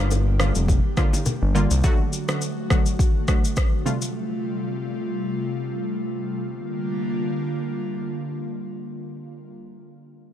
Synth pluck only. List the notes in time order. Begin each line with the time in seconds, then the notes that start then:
Already playing: D3 G3
0.00 A#3 F4
0.39 D3 G3 A#3 F4
0.97 D3 G3 A#3 F4
1.55 D3 G3 A#3 F4
1.84 D3 F#3 A3 F#4
2.28 D3 F#3 A3 F#4
2.70 D3 F#3 A3 F#4
3.28 D3 F#3 A3 F#4
3.86 C3 G3 A3 F4